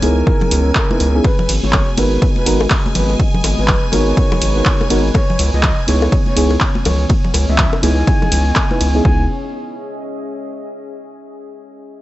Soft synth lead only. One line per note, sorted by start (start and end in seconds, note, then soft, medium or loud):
0.02 1.17 A#4 loud
1.25 1.52 B4 loud
1.63 1.90 C#5 loud
1.98 2.25 B4 loud
2.37 2.63 B4 loud
2.95 3.14 B4 medium
3.59 3.85 B4 loud
3.93 5.07 C#5 loud
5.15 5.42 C#5 loud
5.54 5.80 D#5 loud
5.88 6.15 C#5 loud
6.27 6.53 C#5 loud
6.86 7.05 C#5 medium
7.49 7.75 E5 loud
7.83 8.97 G#5 loud
9.05 9.24 G#5 medium